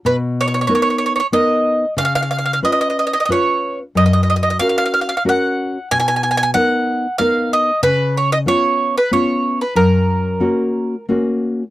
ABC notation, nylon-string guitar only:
X:1
M:3/4
L:1/8
Q:"Swing" 1/4=93
K:F#
V:1 name="Nylon-string guitar"
B,,2 [B,DA]2 [B,DA]2 | C,2 [CEB]2 [CEB]2 | F,,2 [CFA]2 [CFA]2 | B,,2 [B,DA]2 [B,DA]2 |
C,2 [B,CE]2 [B,CE]2 | F,,2 [A,CF]2 [A,CF]2 |]